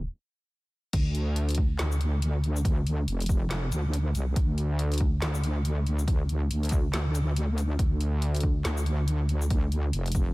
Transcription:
0.93 wobble bass D2, kick, closed hi-hat, crash
1.15 closed hi-hat
1.36 closed hi-hat
1.49 closed hi-hat
1.50 closed hi-hat
1.55 kick, closed hi-hat
1.79 wobble bass D2, snare, clap, closed hi-hat
1.92 shaker
2.01 closed hi-hat
2.22 closed hi-hat
2.44 closed hi-hat
2.56 shaker
2.65 kick, closed hi-hat
2.87 closed hi-hat
3.08 wobble bass F1, closed hi-hat
3.20 closed hi-hat
3.22 closed hi-hat
3.26 kick, closed hi-hat, shaker
3.51 snare, clap, closed hi-hat
3.72 wobble bass D2, closed hi-hat, shaker
3.93 closed hi-hat
4.15 wobble bass C2, closed hi-hat, shaker
4.36 wobble bass D2, kick, closed hi-hat
4.58 closed hi-hat
4.79 closed hi-hat
4.92 closed hi-hat
4.93 closed hi-hat
4.98 kick, closed hi-hat
5.22 wobble bass D2, snare, clap, closed hi-hat
5.35 shaker
5.44 closed hi-hat
5.65 closed hi-hat
5.87 closed hi-hat
5.99 shaker
6.08 kick, closed hi-hat
6.29 closed hi-hat
6.50 wobble bass D2, closed hi-hat
6.63 closed hi-hat
6.65 closed hi-hat
6.69 kick, closed hi-hat, shaker
6.93 wobble bass D2, snare, clap, closed hi-hat
7.15 closed hi-hat, shaker
7.36 closed hi-hat
7.58 closed hi-hat, shaker
7.79 wobble bass D2, kick, closed hi-hat
8.01 closed hi-hat
8.22 closed hi-hat
8.35 closed hi-hat
8.36 closed hi-hat
8.40 kick, closed hi-hat
8.65 wobble bass D2, snare, clap, closed hi-hat
8.77 shaker
8.86 closed hi-hat
9.08 closed hi-hat
9.29 closed hi-hat
9.42 shaker
9.50 kick, closed hi-hat
9.72 closed hi-hat
9.93 wobble bass F1, closed hi-hat
10.06 closed hi-hat
10.08 closed hi-hat
10.12 kick, closed hi-hat, shaker

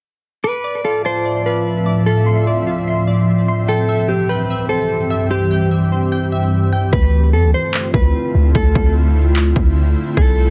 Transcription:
0.44 ambient pad D2 A2 F3 C4 E5, clean electric guitar B4, synth keys D6
0.64 synth keys D5
0.84 synth keys F4, clean electric guitar A4
1.05 clean electric guitar C5, synth keys A5
1.25 synth keys D5
1.46 synth keys F4, clean electric guitar B4
1.86 synth keys D5
2.06 synth keys F4, clean electric guitar A4
2.26 synth keys C6
2.47 synth keys D5
2.67 synth keys F4
2.88 synth keys C6
3.07 synth keys D5
3.48 synth keys C6
3.68 ambient pad C2 G2 E3 G4, clean electric guitar A4, synth keys G5
3.89 synth keys E5
4.08 synth keys C4, clean electric guitar G4
4.29 clean electric guitar B4, synth keys G5
4.50 synth keys E5
4.69 clean electric guitar A4, synth keys C5
5.10 synth keys E5
5.31 clean electric guitar G4, synth keys C5
5.51 synth keys G5
5.71 synth keys E5
5.92 synth keys C5
6.12 synth keys G5
6.32 synth keys E5
6.73 synth keys G5
6.93 808-style bass D2, ambient pad D3 A3 C4 E4 F4, clean electric guitar B4, kick
7.33 808-style bass F2, clean electric guitar A4
7.44 808-style bass D2
7.54 clean electric guitar C5
7.74 clap
7.94 808-style bass D2, clean electric guitar B4, kick
8.35 808-style bass D2
8.55 808-style bass D2, clean electric guitar A4, kick
8.75 808-style bass D2, kick
9.36 clap
9.56 808-style bass D2, kick
10.17 808-style bass C2, clean electric guitar A4, kick

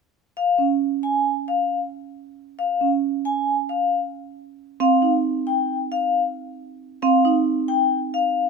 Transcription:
0.37 vibraphone F5
0.58 marimba C#4
1.03 vibraphone G#5
1.48 vibraphone F5
2.59 vibraphone F5
2.81 marimba C#4
3.25 vibraphone G#5
3.69 vibraphone F5
4.80 marimba C4, vibraphone F5
5.02 marimba D#4
5.47 vibraphone G5
5.92 vibraphone F5
7.02 marimba C4, vibraphone F5
7.25 marimba D#4
7.68 vibraphone G5
8.14 vibraphone F5

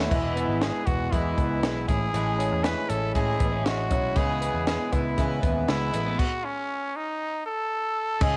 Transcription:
Already playing: clean electric guitar F#3, twelve-string acoustic guitar A3 B3 F#4, trumpet E4
0.10 picked electric bass E1, twelve-string acoustic guitar E2 B2 E3 G#3 B3 E4, kick, crash
0.36 clean electric guitar B3, closed hi-hat
0.48 picked electric bass G#1
0.61 twelve-string acoustic guitar E3 G#3 B3 E4, trumpet G#4, snare, closed hi-hat
0.86 picked electric bass E1, clean electric guitar B3, trumpet F#4, kick, closed hi-hat
1.12 picked electric bass E2, twelve-string acoustic guitar E2 B2 E3 G#3 B3 E4, trumpet E4, kick, closed hi-hat
1.37 picked electric bass C#2, clean electric guitar B3, kick, closed hi-hat
1.63 picked electric bass B1, twelve-string acoustic guitar E3 G#3 B3 E4, snare, closed hi-hat
1.88 picked electric bass A1, clean electric guitar A2, twelve-string acoustic guitar G#3 C#4 E4, trumpet G#4, kick, closed hi-hat
2.14 picked electric bass A1, twelve-string acoustic guitar A2 E3 G#3 C#4 E4, closed hi-hat
2.38 clean electric guitar C#4, closed hi-hat
2.52 picked electric bass E2
2.64 twelve-string acoustic guitar E3 G#3 C#4 E4, trumpet B4, snare, closed hi-hat
2.89 picked electric bass A1, clean electric guitar C#4, trumpet A4, closed hi-hat
3.15 twelve-string acoustic guitar A2 E3 G#3 C#4 E4, picked electric bass A2, trumpet G#4, kick, closed hi-hat
3.39 picked electric bass A1, clean electric guitar B3, kick, closed hi-hat
3.52 clean electric guitar C#4
3.65 picked electric bass A1, twelve-string acoustic guitar E3 G#3 C#4 E4, trumpet F#4, snare, closed hi-hat
3.91 picked electric bass B1, twelve-string acoustic guitar G#3 C#4 E4, kick, closed hi-hat
4.16 picked electric bass C#2, twelve-string acoustic guitar C#3 E3 G#3 B3 E4, trumpet G#4, kick, closed hi-hat
4.41 clean electric guitar B3, closed hi-hat
4.54 picked electric bass E2
4.67 twelve-string acoustic guitar E3 G#3 B3 E4, trumpet G#4, snare, closed hi-hat
4.93 picked electric bass C#2, twelve-string acoustic guitar G#3 B3 E4, trumpet E4, kick, closed hi-hat
5.18 picked electric bass C#3, twelve-string acoustic guitar C#3 E3 G#3 B3 E4, kick, closed hi-hat
5.42 picked electric bass D#2, clean electric guitar B3, kick, closed hi-hat
5.68 picked electric bass C#2, twelve-string acoustic guitar E3 G#3 B3 E4, trumpet E4, snare, closed hi-hat
5.93 picked electric bass A1, twelve-string acoustic guitar G#3 B3 E4, clean electric guitar A3, closed hi-hat
6.06 clean electric guitar B3
6.19 trumpet F#4, kick, crash
6.44 trumpet C#4
6.96 trumpet D#4
7.46 trumpet A4
8.21 picked electric bass C#2, twelve-string acoustic guitar C#3 G#3 C#4 D#4 G#4, trumpet G#4, kick, crash

